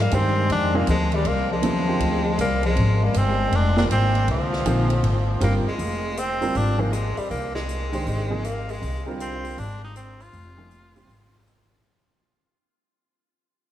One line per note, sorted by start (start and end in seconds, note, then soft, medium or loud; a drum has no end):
0.00 0.11 G#2 medium
0.00 0.14 G3 medium
0.00 0.16 A#3 medium
0.11 0.49 G2 medium
0.11 0.69 D#3 medium
0.11 0.50 G#3 medium
0.11 0.51 C4 medium
0.11 0.70 D4 medium
0.11 0.70 G4 medium
0.11 0.70 G#4 medium
0.11 0.70 C5 medium
0.11 hi-hat pedal medium
0.11 ride medium
0.49 0.86 F2 medium
0.49 0.76 G#3 medium
0.49 0.77 D4 loud
0.49 ride medium
0.74 0.86 C3 medium
0.74 0.86 F3 medium
0.74 0.88 G3 medium
0.74 0.87 A#3 medium
0.74 0.88 A#3 medium
0.74 0.86 D#4 medium
0.74 0.87 G#4 medium
0.87 1.24 D2 medium
0.87 1.14 F3 medium
0.87 1.16 G#3 loud
0.87 hi-hat pedal medium
0.87 ride medium
1.12 1.27 D#3 medium
1.12 1.28 G3 medium
1.12 ride soft
1.25 1.61 C2 medium
1.25 1.50 G3 medium
1.25 1.51 A#3 loud
1.25 ride medium
1.51 2.35 F3 medium
1.51 2.36 G#3 medium
1.62 1.99 D#2 medium
1.62 1.85 C#3 medium
1.62 1.85 F#3 medium
1.62 1.85 B3 medium
1.62 1.85 E4 soft
1.62 1.85 A4 medium
1.62 hi-hat pedal soft
1.62 ride medium
1.87 2.20 D3 medium
1.87 2.20 C4 medium
1.87 2.21 F4 medium
1.87 2.20 G4 soft
1.87 2.21 A#4 medium
2.00 2.37 D2 medium
2.00 ride medium
2.38 2.75 C2 medium
2.38 2.61 G3 medium
2.38 2.62 A#3 loud
2.38 hi-hat pedal medium
2.38 ride medium
2.63 3.03 F3 medium
2.63 3.05 G#3 loud
2.63 ride soft
2.76 3.13 G#1 medium
2.76 ride medium
3.02 3.18 G3 medium
3.02 3.19 A#3 medium
3.14 3.51 G1 medium
3.14 3.53 G#3 medium
3.14 hi-hat pedal medium
3.14 ride medium
3.18 3.57 C4 loud
3.51 3.89 F1 medium
3.51 3.76 G#3 medium
3.51 ride medium
3.56 3.78 D4 loud
3.76 3.89 D3 medium
3.76 3.89 G3 medium
3.76 3.83 A#3 medium
3.76 3.89 C4 medium
3.76 3.84 D4 medium
3.76 3.89 F4 medium
3.76 3.89 A#4 medium
3.76 snare medium
3.89 4.26 G#1 medium
3.89 4.25 G#3 medium
3.89 4.26 C4 loud
3.89 hi-hat pedal medium
3.89 ride medium
4.15 ride soft
4.27 4.64 C2 medium
4.27 5.37 D3 medium
4.27 5.39 F3 medium
4.27 ride medium
4.53 snare soft
4.65 5.02 A#1 medium
4.65 4.87 C3 medium
4.65 4.88 F3 medium
4.65 4.88 A#3 medium
4.65 4.88 D#4 medium
4.65 4.88 G#4 medium
4.65 hi-hat pedal soft
4.65 ride medium
4.90 ride soft
5.03 5.40 G#1 medium
5.03 ride medium
5.41 5.64 G1 medium
5.41 5.63 D3 medium
5.41 5.63 G3 medium
5.41 5.54 A#3 medium
5.41 5.64 C4 medium
5.41 5.64 F4 medium
5.41 5.64 A#4 medium
5.41 hi-hat pedal medium
5.41 ride medium
5.65 6.20 G#3 medium
5.65 muted upright bass stroke soft
5.79 6.51 F1 medium
5.79 open hi-hat soft
6.17 6.58 C4 loud
6.17 closed hi-hat medium
6.41 6.77 D3 medium
6.41 6.77 G3 medium
6.41 6.77 C4 medium
6.41 6.77 F4 medium
6.41 6.77 A#4 medium
6.41 open hi-hat soft
6.55 7.13 G#1 medium
6.55 6.82 D4 medium
6.55 open hi-hat soft
6.78 6.91 C3 medium
6.78 6.91 F3 medium
6.78 6.91 A#3 medium
6.78 6.95 A#3 medium
6.78 6.91 D#4 medium
6.78 6.91 G#4 medium
6.93 7.19 G#3 medium
6.93 cross-stick medium
6.93 closed hi-hat medium
7.17 7.30 G3 medium
7.17 muted upright bass stroke soft
7.17 open hi-hat soft
7.30 8.02 C2 medium
7.30 7.53 A#3 medium
7.30 open hi-hat soft
7.55 8.47 G#3 loud
7.55 snare medium
7.69 closed hi-hat soft
7.92 8.28 D#3 medium
7.92 8.28 G#3 medium
7.92 8.28 D4 medium
7.92 8.28 G4 medium
7.92 8.28 C5 medium
7.92 open hi-hat soft
8.06 8.78 G#1 medium
8.06 open hi-hat soft
8.30 8.43 C3 medium
8.30 8.42 F3 medium
8.30 8.42 A#3 medium
8.30 8.43 D#4 medium
8.30 8.43 G#4 medium
8.44 8.72 A#3 loud
8.44 cross-stick medium
8.44 closed hi-hat medium
8.69 9.07 G#3 medium
8.69 open hi-hat soft
8.82 9.53 C2 medium
8.82 open hi-hat soft
9.06 9.55 D3 medium
9.06 9.55 G3 medium
9.06 9.55 C4 medium
9.06 9.55 F4 medium
9.06 9.55 A#4 medium
9.20 9.60 C4 medium
9.20 closed hi-hat medium
9.44 open hi-hat soft
9.57 10.29 G#1 medium
9.57 9.83 D4 loud
9.57 open hi-hat soft
9.84 9.95 D#4 medium
9.96 10.23 C4 medium
9.96 cross-stick medium
9.96 closed hi-hat medium
10.20 11.72 F4 loud
10.20 open hi-hat soft
10.33 11.05 F1 medium
10.33 open hi-hat soft
10.57 10.69 C3 medium
10.57 10.69 F3 medium
10.57 10.70 A#3 medium
10.57 10.70 D#4 medium
10.57 10.70 G#4 medium
10.71 closed hi-hat medium
10.95 11.07 D3 medium
10.95 11.08 G3 medium
10.95 11.07 C4 medium
10.95 11.08 F4 medium
10.95 11.08 G4 medium
10.95 open hi-hat soft
11.08 11.80 G#1 medium
11.08 open hi-hat soft
11.47 cross-stick medium
11.47 closed hi-hat medium